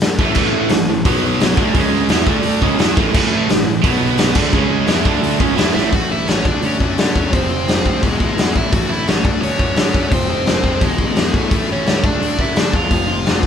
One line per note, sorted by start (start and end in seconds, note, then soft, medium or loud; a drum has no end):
0.01 snare loud
0.01 open hi-hat medium
0.19 0.36 A1 loud
0.19 0.36 A2 medium
0.19 0.36 E3 medium
0.19 0.37 A3 loud
0.19 kick loud
0.35 0.69 A1 loud
0.35 0.71 A2 loud
0.35 0.71 E3 loud
0.35 0.72 A3 loud
0.35 kick loud
0.35 crash loud
0.69 0.87 A1 medium
0.69 0.86 A2 medium
0.69 0.86 E3 medium
0.69 snare loud
0.69 open hi-hat medium
0.88 1.05 A1 medium
0.88 1.03 A2 medium
0.88 1.03 E3 medium
1.05 1.54 B1 medium
1.05 1.57 B2 loud
1.05 1.57 F#3 loud
1.05 1.57 B3 loud
1.05 kick loud
1.05 open hi-hat medium
1.40 snare loud
1.40 open hi-hat medium
1.57 1.74 D2 loud
1.57 1.76 D3 loud
1.57 1.75 A3 medium
1.57 1.76 D4 loud
1.57 kick loud
1.75 2.07 C#2 medium
1.75 2.10 C#3 loud
1.75 2.10 G#3 loud
1.75 2.10 C#4 loud
1.75 kick loud
1.75 open hi-hat medium
2.09 2.26 E2 medium
2.09 2.27 E3 loud
2.09 2.28 B3 loud
2.09 2.28 E4 loud
2.09 snare loud
2.09 open hi-hat medium
2.27 2.60 D2 loud
2.27 2.62 D3 loud
2.27 2.62 A3 loud
2.27 2.63 D4 loud
2.27 kick loud
2.43 open hi-hat medium
2.62 2.78 C#2 loud
2.62 2.79 C#3 medium
2.62 2.79 G#3 medium
2.62 2.80 C#4 loud
2.62 kick loud
2.79 2.96 E2 loud
2.79 2.96 E3 medium
2.79 2.97 B3 loud
2.79 2.97 E4 loud
2.79 snare loud
2.79 open hi-hat medium
2.97 3.13 A1 loud
2.97 3.14 A2 medium
2.97 3.14 E3 medium
2.97 3.15 A3 loud
2.97 kick loud
3.14 3.47 A1 medium
3.14 3.50 A2 loud
3.14 3.50 E3 loud
3.14 3.50 A3 loud
3.14 kick loud
3.14 crash loud
3.49 3.65 A1 medium
3.49 3.64 A2 medium
3.49 3.64 E3 medium
3.49 snare loud
3.49 open hi-hat medium
3.64 3.83 A1 medium
3.64 3.81 A2 medium
3.64 3.82 E3 medium
3.68 3.81 E3 medium
3.84 4.32 B1 loud
3.84 4.36 B2 medium
3.84 4.36 F#3 medium
3.84 4.36 B3 loud
3.84 kick loud
3.84 open hi-hat medium
4.18 snare loud
4.18 open hi-hat medium
4.35 4.52 D2 loud
4.35 4.53 D3 loud
4.35 4.53 A3 loud
4.35 4.54 D4 loud
4.35 kick loud
4.35 crash loud
4.53 4.85 C#2 medium
4.53 4.88 C#3 medium
4.53 4.88 G#3 loud
4.53 4.88 C#4 loud
4.53 kick loud
4.87 5.04 E2 medium
4.87 5.05 E3 loud
4.87 5.05 B3 medium
4.87 5.05 E4 loud
4.87 snare loud
4.87 open hi-hat medium
5.05 5.38 D2 loud
5.05 5.40 D3 medium
5.05 5.40 A3 loud
5.05 5.40 D4 loud
5.05 kick loud
5.23 open hi-hat medium
5.40 5.56 C#2 medium
5.40 5.57 C#3 medium
5.40 5.57 G#3 loud
5.40 5.57 C#4 loud
5.40 kick loud
5.57 5.74 E2 loud
5.57 5.73 E3 medium
5.57 5.74 B3 medium
5.57 5.74 E4 loud
5.57 snare loud
5.57 open hi-hat medium
5.75 5.92 A1 medium
5.75 5.91 A2 medium
5.75 5.91 E3 medium
5.75 5.91 A3 loud
5.75 5.91 E4 medium
5.75 5.93 E5 loud
5.75 snare medium
5.92 6.08 A1 medium
5.92 6.08 A2 medium
5.92 6.09 E3 medium
5.92 6.10 A3 loud
5.92 6.10 F#4 medium
5.92 6.11 F#5 medium
5.92 kick loud
5.92 open hi-hat medium
6.09 6.25 A1 medium
6.09 6.27 A2 medium
6.09 6.27 E3 medium
6.09 6.28 A3 medium
6.09 6.27 E4 medium
6.09 6.29 E5 medium
6.27 6.43 A1 medium
6.27 6.44 A2 medium
6.27 6.44 E3 medium
6.27 6.44 A3 medium
6.27 6.44 C#4 medium
6.27 6.45 C#5 medium
6.27 snare loud
6.27 open hi-hat medium
6.45 6.61 D2 medium
6.45 6.63 D3 medium
6.45 6.62 A3 medium
6.45 6.63 D4 loud
6.45 6.62 D4 medium
6.45 6.65 D5 medium
6.45 kick loud
6.62 6.78 D2 medium
6.62 6.80 D3 medium
6.62 6.81 A3 medium
6.62 7.29 C#4 medium
6.62 6.81 D4 medium
6.62 7.34 C#5 medium
6.62 open hi-hat medium
6.80 6.96 F#2 medium
6.80 6.96 D3 medium
6.80 6.97 A3 medium
6.80 6.97 D4 medium
6.80 kick medium
6.97 7.13 D3 medium
6.97 7.15 D3 medium
6.97 7.15 A3 loud
6.97 7.15 D4 loud
6.97 snare loud
6.97 open hi-hat medium
7.16 7.31 E2 medium
7.16 7.32 D3 medium
7.16 7.32 A3 loud
7.16 7.32 D4 medium
7.16 kick medium
7.33 7.49 F1 medium
7.33 7.49 F2 medium
7.33 7.50 C3 loud
7.33 7.50 F3 loud
7.33 7.99 C4 medium
7.33 8.05 C5 medium
7.33 kick loud
7.33 open hi-hat medium
7.51 7.66 F1 medium
7.51 7.67 F2 medium
7.51 7.67 C3 medium
7.51 7.67 F3 medium
7.68 7.83 F1 medium
7.68 7.85 F2 medium
7.68 7.86 C3 medium
7.68 7.86 F3 loud
7.68 snare loud
7.68 open hi-hat medium
7.86 8.01 D2 medium
7.86 8.02 F2 loud
7.86 8.02 C3 loud
7.86 8.02 F3 loud
7.86 kick medium
8.02 8.18 E1 medium
8.02 8.20 E2 medium
8.02 8.20 B2 medium
8.02 8.21 E3 loud
8.02 8.51 G#3 medium
8.02 8.56 G#4 medium
8.02 kick loud
8.02 open hi-hat medium
8.20 8.36 A1 medium
8.20 8.38 E2 medium
8.20 8.38 B2 medium
8.20 8.39 E3 medium
8.20 kick medium
8.37 8.53 E2 medium
8.37 8.56 E2 medium
8.37 8.56 B2 loud
8.37 8.57 E3 loud
8.37 snare loud
8.37 open hi-hat medium
8.56 8.71 A1 medium
8.56 8.72 E2 medium
8.56 8.72 B2 medium
8.56 8.73 E3 medium
8.56 8.72 E4 medium
8.56 8.73 E5 loud
8.56 kick medium
8.71 8.88 A1 medium
8.71 8.88 F#4 medium
8.71 8.91 F#5 loud
8.71 kick loud
8.71 open hi-hat medium
8.75 8.90 A2 medium
8.75 8.90 E3 loud
8.75 8.90 A3 loud
8.90 9.05 A1 medium
8.90 9.06 A2 medium
8.90 9.06 E3 medium
8.90 9.07 A3 medium
8.90 9.06 E4 medium
8.90 9.11 E5 medium
9.07 9.25 A1 medium
9.07 9.24 A2 medium
9.07 9.24 E3 medium
9.07 9.24 A3 medium
9.07 9.24 C#4 medium
9.07 9.26 C#5 loud
9.07 snare loud
9.07 open hi-hat medium
9.25 9.40 D2 medium
9.25 9.41 D3 loud
9.25 9.41 A3 loud
9.25 9.41 D4 medium
9.25 9.41 D4 loud
9.25 9.43 D5 medium
9.25 kick loud
9.42 9.58 D2 medium
9.42 9.58 D3 medium
9.42 9.59 A3 medium
9.42 10.08 C#4 medium
9.42 9.58 D4 loud
9.42 10.13 C#5 medium
9.42 open hi-hat medium
9.59 9.75 F#2 medium
9.59 9.75 D3 medium
9.59 9.75 A3 medium
9.59 9.76 D4 medium
9.59 kick medium
9.76 9.93 D3 loud
9.76 9.92 D3 medium
9.76 9.94 A3 loud
9.76 9.93 D4 loud
9.76 snare loud
9.76 open hi-hat medium
9.94 10.10 F#2 medium
9.94 10.10 D3 medium
9.94 10.11 A3 medium
9.94 10.11 D4 medium
9.94 kick medium
10.11 10.27 F1 loud
10.11 10.28 F2 loud
10.11 10.28 C3 loud
10.11 10.28 F3 loud
10.11 10.78 C4 medium
10.11 10.85 C5 loud
10.11 kick loud
10.11 open hi-hat medium
10.29 10.45 F1 medium
10.29 10.44 F2 medium
10.29 10.44 C3 medium
10.29 10.45 F3 medium
10.45 10.62 F1 medium
10.45 10.63 F2 medium
10.45 10.63 C3 medium
10.45 10.64 F3 medium
10.45 snare loud
10.45 open hi-hat medium
10.64 10.80 F1 medium
10.64 10.81 F2 medium
10.64 10.81 C3 loud
10.64 10.81 F3 loud
10.64 kick medium
10.81 10.97 E1 medium
10.81 10.98 E2 loud
10.81 10.98 B2 loud
10.81 10.98 E3 loud
10.81 11.31 G#3 medium
10.81 11.36 G#4 medium
10.81 kick loud
10.81 open hi-hat medium
10.98 11.14 A1 medium
10.98 11.16 E2 medium
10.98 11.17 B2 medium
10.98 11.17 E3 medium
10.98 kick medium
11.16 11.32 E2 medium
11.16 11.35 E2 medium
11.16 11.35 B2 medium
11.16 11.35 E3 loud
11.16 snare loud
11.16 open hi-hat medium
11.34 11.50 A1 medium
11.34 11.51 E2 medium
11.34 11.51 B2 medium
11.34 11.50 E3 medium
11.34 11.67 A3 medium
11.34 11.68 A4 medium
11.34 kick medium
11.51 11.67 A1 medium
11.51 11.68 A2 medium
11.51 11.67 E3 loud
11.51 11.68 A3 loud
11.51 kick loud
11.51 open hi-hat medium
11.69 11.85 A1 medium
11.69 11.84 A2 medium
11.69 11.85 E3 medium
11.69 11.86 A3 medium
11.69 12.03 C#5 medium
11.73 12.03 C#4 medium
11.86 12.03 C#2 medium
11.86 12.02 A2 medium
11.86 12.03 E3 medium
11.86 12.02 A3 loud
11.86 snare loud
11.86 open hi-hat medium
12.03 12.20 D2 medium
12.03 12.20 D3 medium
12.03 12.20 A3 loud
12.03 12.21 D4 loud
12.03 12.37 D4 medium
12.03 12.41 D5 medium
12.03 kick loud
12.21 12.37 D2 medium
12.21 12.37 D3 medium
12.21 12.38 A3 medium
12.21 12.38 D4 medium
12.21 open hi-hat medium
12.38 12.54 F#2 medium
12.38 12.55 D3 medium
12.38 12.55 A3 medium
12.38 12.56 D4 medium
12.38 12.56 E4 medium
12.38 12.56 E5 medium
12.38 kick medium
12.55 12.71 D3 medium
12.55 12.72 D3 medium
12.55 12.73 A3 loud
12.55 12.73 D4 loud
12.55 snare loud
12.55 open hi-hat medium
12.60 12.75 D4 medium
12.60 12.75 D5 medium
12.73 12.89 E2 medium
12.73 12.90 D3 medium
12.73 12.90 A3 loud
12.73 12.90 D4 medium
12.73 13.41 F4 medium
12.73 13.40 F5 medium
12.73 kick medium
12.91 13.07 F1 medium
12.91 13.07 F2 loud
12.91 13.08 C3 medium
12.91 13.07 F3 loud
12.91 kick loud
12.91 open hi-hat medium
13.08 13.24 F1 medium
13.08 13.24 F2 medium
13.08 13.24 C3 medium
13.08 13.25 F3 medium
13.25 13.42 F1 medium
13.25 13.42 F2 medium
13.25 13.42 C3 medium
13.25 13.43 F3 medium
13.25 snare loud
13.25 open hi-hat medium
13.43 13.47 F1 medium
13.43 13.47 F2 medium
13.43 13.47 C3 medium
13.43 kick medium